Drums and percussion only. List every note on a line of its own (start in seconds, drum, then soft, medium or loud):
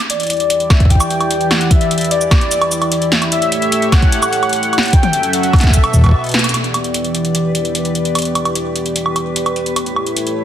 0.10 closed hi-hat medium
0.20 closed hi-hat soft
0.23 closed hi-hat soft
0.27 closed hi-hat soft
0.30 closed hi-hat medium
0.33 closed hi-hat soft
0.37 closed hi-hat soft
0.40 closed hi-hat soft
0.50 closed hi-hat medium
0.60 closed hi-hat soft
0.70 kick loud
0.70 snare loud
0.70 closed hi-hat medium
0.70 high woodblock medium
0.80 kick medium
0.80 closed hi-hat soft
0.85 kick medium
0.90 kick medium
0.90 closed hi-hat medium
0.95 kick soft
1.00 closed hi-hat soft
1.00 cabasa medium
1.00 high woodblock medium
1.10 closed hi-hat medium
1.21 closed hi-hat soft
1.21 high woodblock soft
1.31 closed hi-hat medium
1.41 closed hi-hat soft
1.51 snare loud
1.51 closed hi-hat soft
1.51 high woodblock soft
1.61 closed hi-hat soft
1.71 kick medium
1.71 closed hi-hat medium
1.81 closed hi-hat soft
1.91 closed hi-hat medium
1.98 closed hi-hat medium
2.01 closed hi-hat soft
2.04 closed hi-hat soft
2.11 closed hi-hat medium
2.21 cabasa medium
2.31 kick loud
2.31 snare loud
2.31 closed hi-hat medium
2.31 high woodblock medium
2.41 closed hi-hat soft
2.51 closed hi-hat medium
2.51 cabasa medium
2.62 closed hi-hat soft
2.62 high woodblock medium
2.72 closed hi-hat medium
2.72 cabasa medium
2.82 closed hi-hat soft
2.82 high woodblock medium
2.92 closed hi-hat medium
3.02 closed hi-hat soft
3.12 snare loud
3.12 closed hi-hat soft
3.22 closed hi-hat soft
3.22 high woodblock soft
3.32 closed hi-hat medium
3.42 closed hi-hat soft
3.52 closed hi-hat medium
3.62 closed hi-hat soft
3.72 closed hi-hat medium
3.82 closed hi-hat soft
3.92 kick loud
3.92 snare loud
3.92 closed hi-hat medium
3.92 high woodblock medium
4.02 kick medium
4.02 closed hi-hat soft
4.12 closed hi-hat medium
4.23 closed hi-hat soft
4.23 cabasa medium
4.23 high woodblock medium
4.33 closed hi-hat medium
4.43 closed hi-hat soft
4.43 high woodblock medium
4.49 closed hi-hat soft
4.53 closed hi-hat medium
4.56 closed hi-hat soft
4.63 closed hi-hat soft
4.73 closed hi-hat soft
4.73 high woodblock soft
4.78 snare loud
4.83 closed hi-hat soft
4.86 closed hi-hat soft
4.88 closed hi-hat soft
4.91 kick medium
4.91 closed hi-hat soft
4.93 closed hi-hat medium
5.03 closed hi-hat soft
5.03 high tom medium
5.13 closed hi-hat medium
5.23 closed hi-hat soft
5.33 closed hi-hat loud
5.43 closed hi-hat soft
5.53 kick loud
5.53 snare medium
5.53 closed hi-hat soft
5.53 high woodblock medium
5.56 closed hi-hat soft
5.58 snare medium
5.58 closed hi-hat soft
5.61 kick medium
5.61 closed hi-hat medium
5.63 snare medium
5.63 closed hi-hat soft
5.70 kick medium
5.70 closed hi-hat loud
5.70 cabasa medium
5.77 kick medium
5.84 closed hi-hat soft
5.84 high woodblock medium
5.94 kick soft
5.94 cabasa medium
5.96 kick medium
5.99 kick medium
6.01 kick medium
6.04 kick medium
6.04 closed hi-hat soft
6.04 high woodblock medium
6.06 kick medium
6.06 high woodblock soft
6.09 kick medium
6.11 kick loud
6.11 high woodblock soft
6.14 high woodblock soft
6.16 high woodblock soft
6.19 high woodblock soft
6.21 closed hi-hat soft
6.21 high woodblock soft
6.26 closed hi-hat soft
6.29 closed hi-hat soft
6.32 snare loud
6.32 closed hi-hat soft
6.34 closed hi-hat medium
6.39 closed hi-hat medium
6.44 closed hi-hat medium
6.44 high woodblock soft
6.49 closed hi-hat medium
6.54 closed hi-hat medium
6.54 high woodblock soft
6.64 closed hi-hat soft
6.74 closed hi-hat medium
6.74 high woodblock medium
6.84 closed hi-hat soft
6.94 closed hi-hat medium
7.04 closed hi-hat soft
7.15 closed hi-hat medium
7.25 closed hi-hat soft
7.35 closed hi-hat medium
7.55 closed hi-hat medium
7.65 closed hi-hat soft
7.75 closed hi-hat medium
7.85 closed hi-hat soft
7.95 closed hi-hat soft
8.05 closed hi-hat soft
8.15 closed hi-hat medium
8.15 high woodblock soft
8.19 closed hi-hat medium
8.22 closed hi-hat medium
8.25 closed hi-hat soft
8.35 closed hi-hat medium
8.35 high woodblock medium
8.45 closed hi-hat soft
8.45 high woodblock medium
8.55 closed hi-hat medium
8.76 closed hi-hat medium
8.86 closed hi-hat soft
8.96 closed hi-hat medium
9.06 high woodblock medium
9.16 closed hi-hat medium
9.16 high woodblock soft
9.36 closed hi-hat medium
9.46 closed hi-hat soft
9.46 high woodblock medium
9.56 closed hi-hat soft
9.66 closed hi-hat soft
9.76 closed hi-hat medium
9.76 high woodblock soft
9.86 closed hi-hat soft
9.96 high woodblock medium
10.06 closed hi-hat soft
10.17 closed hi-hat medium
10.27 closed hi-hat soft